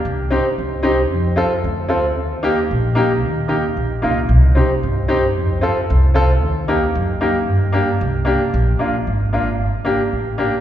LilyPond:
<<
  \new Staff \with { instrumentName = "Upright piano" } { \time 2/4 \key c \dorian \tempo 4 = 113 r8 <c' ees' g'>16 r8. <c' ees' g'>16 r16 | r8 <c' f' a'>16 r8. <c' f' a'>16 r16 | r8 <bes ees' g'>16 r8. <bes ees' g'>16 r16 | r8 <bes ees' g'>16 r8. <bes ees' f'>16 r16 |
r8 <c' ees' g'>16 r8. <c' ees' g'>16 r16 | r8 <c' f' a'>16 r8. <c' f' a'>16 r16 | r8 <bes ees' g'>16 r8. <bes ees' g'>16 r16 | r8 <bes d' g'>16 r8. <bes d' g'>16 r16 |
\key bes \major r8 <bes d' f'>16 r8. <bes d' f'>16 r16 | r8 <bes d' g'>16 r8. <bes d' g'>16 r16 | }
  \new Staff \with { instrumentName = "Upright bass" } { \clef bass \time 2/4 \key c \dorian c,4 c,4 | f,4 d,4 | ees,4 bes,,4 | ees,4 bes,,8 c,8 |
c,4 g,4 | f,4 c,4 | ees,4 fis,4 | g,4 c,4 |
\key bes \major bes,,8 r8 aes,,4 | g,,8 r8 a,,4 | }
>>